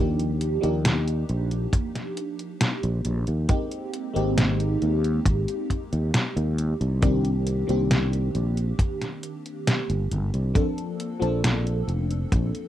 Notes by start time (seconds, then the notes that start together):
Already playing: D#2 F3 A#3 D4 D#4 G4
0.19 closed hi-hat
0.41 closed hi-hat
0.61 D#2 F3 A#3 D4 D#4 G4, closed hi-hat
0.85 snare, closed hi-hat
1.08 closed hi-hat
1.29 A#1, closed hi-hat
1.51 closed hi-hat
1.73 kick, closed hi-hat
1.95 snare, closed hi-hat
2.17 closed hi-hat
2.39 closed hi-hat
2.61 snare, closed hi-hat
2.83 A#1, closed hi-hat
3.05 A#1, closed hi-hat
3.27 D#2, closed hi-hat
3.48 G#3 A#3 C4 D#4 G4, kick, closed hi-hat
3.71 closed hi-hat
3.94 closed hi-hat
4.13 G#1 G#3 A#3 C4 D#4 G4, closed hi-hat
4.38 snare, closed hi-hat
4.60 closed hi-hat
4.82 D#2, closed hi-hat
5.04 closed hi-hat
5.25 G#1, kick, closed hi-hat
5.48 closed hi-hat
5.70 kick, closed hi-hat
5.93 D#2, closed hi-hat
6.14 snare, closed hi-hat
6.36 D#2, closed hi-hat
6.58 closed hi-hat
6.81 C2, closed hi-hat
7.01 D#3 A#3 C4 D4 G4, kick, closed hi-hat
7.25 closed hi-hat
7.47 closed hi-hat
7.67 C2 D#3 A#3 C4 D4 G4, closed hi-hat
7.91 snare, closed hi-hat
8.13 closed hi-hat
8.35 A#1, closed hi-hat
8.57 closed hi-hat
8.79 kick, closed hi-hat
9.02 snare, closed hi-hat
9.23 closed hi-hat
9.46 closed hi-hat
9.67 snare, closed hi-hat
9.90 G1, closed hi-hat
10.11 G1, closed hi-hat
10.34 C2, closed hi-hat
10.54 F3 A#3 C4 D4 A4, kick, closed hi-hat
10.78 closed hi-hat
11.00 closed hi-hat
11.20 A#1 F3 A#3 C4 D4 A4, closed hi-hat
11.44 snare, closed hi-hat
11.67 closed hi-hat
11.88 F1, closed hi-hat
12.11 closed hi-hat
12.32 A#1, kick, closed hi-hat
12.55 closed hi-hat